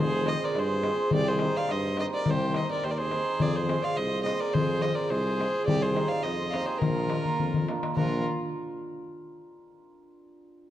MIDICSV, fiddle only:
0, 0, Header, 1, 2, 480
1, 0, Start_track
1, 0, Tempo, 570342
1, 949, Time_signature, 2, 2, 24, 8
1, 9005, End_track
2, 0, Start_track
2, 0, Title_t, "Fiddle"
2, 0, Program_c, 0, 110
2, 0, Note_on_c, 0, 72, 104
2, 234, Note_on_c, 0, 75, 95
2, 247, Note_off_c, 0, 72, 0
2, 373, Note_on_c, 0, 74, 80
2, 386, Note_off_c, 0, 75, 0
2, 500, Note_on_c, 0, 72, 90
2, 513, Note_off_c, 0, 74, 0
2, 958, Note_off_c, 0, 72, 0
2, 963, Note_on_c, 0, 74, 100
2, 1078, Note_on_c, 0, 72, 96
2, 1091, Note_off_c, 0, 74, 0
2, 1320, Note_on_c, 0, 77, 90
2, 1332, Note_off_c, 0, 72, 0
2, 1440, Note_on_c, 0, 75, 88
2, 1453, Note_off_c, 0, 77, 0
2, 1675, Note_off_c, 0, 75, 0
2, 1679, Note_on_c, 0, 75, 91
2, 1732, Note_off_c, 0, 75, 0
2, 1799, Note_on_c, 0, 74, 88
2, 1937, Note_on_c, 0, 72, 88
2, 1950, Note_off_c, 0, 74, 0
2, 2153, Note_on_c, 0, 75, 81
2, 2166, Note_off_c, 0, 72, 0
2, 2274, Note_off_c, 0, 75, 0
2, 2284, Note_on_c, 0, 74, 81
2, 2391, Note_on_c, 0, 72, 83
2, 2403, Note_off_c, 0, 74, 0
2, 2445, Note_on_c, 0, 74, 69
2, 2457, Note_off_c, 0, 72, 0
2, 2504, Note_on_c, 0, 72, 95
2, 2517, Note_off_c, 0, 74, 0
2, 2880, Note_on_c, 0, 74, 87
2, 2892, Note_off_c, 0, 72, 0
2, 2994, Note_on_c, 0, 72, 84
2, 3007, Note_off_c, 0, 74, 0
2, 3229, Note_on_c, 0, 77, 84
2, 3242, Note_off_c, 0, 72, 0
2, 3339, Note_on_c, 0, 75, 78
2, 3352, Note_off_c, 0, 77, 0
2, 3557, Note_off_c, 0, 75, 0
2, 3562, Note_on_c, 0, 75, 72
2, 3702, Note_on_c, 0, 74, 78
2, 3714, Note_off_c, 0, 75, 0
2, 3816, Note_on_c, 0, 72, 93
2, 3829, Note_off_c, 0, 74, 0
2, 4052, Note_on_c, 0, 75, 82
2, 4064, Note_off_c, 0, 72, 0
2, 4166, Note_on_c, 0, 74, 78
2, 4178, Note_off_c, 0, 75, 0
2, 4290, Note_on_c, 0, 72, 90
2, 4302, Note_off_c, 0, 74, 0
2, 4758, Note_off_c, 0, 72, 0
2, 4763, Note_on_c, 0, 74, 96
2, 4900, Note_on_c, 0, 72, 90
2, 4913, Note_off_c, 0, 74, 0
2, 5120, Note_on_c, 0, 77, 92
2, 5133, Note_off_c, 0, 72, 0
2, 5240, Note_on_c, 0, 75, 81
2, 5253, Note_off_c, 0, 77, 0
2, 5466, Note_off_c, 0, 75, 0
2, 5474, Note_on_c, 0, 77, 58
2, 5489, Note_on_c, 0, 75, 83
2, 5502, Note_off_c, 0, 77, 0
2, 5605, Note_on_c, 0, 72, 73
2, 5618, Note_off_c, 0, 75, 0
2, 5706, Note_on_c, 0, 70, 81
2, 5718, Note_off_c, 0, 72, 0
2, 6448, Note_off_c, 0, 70, 0
2, 6692, Note_on_c, 0, 70, 77
2, 6924, Note_off_c, 0, 70, 0
2, 9005, End_track
0, 0, End_of_file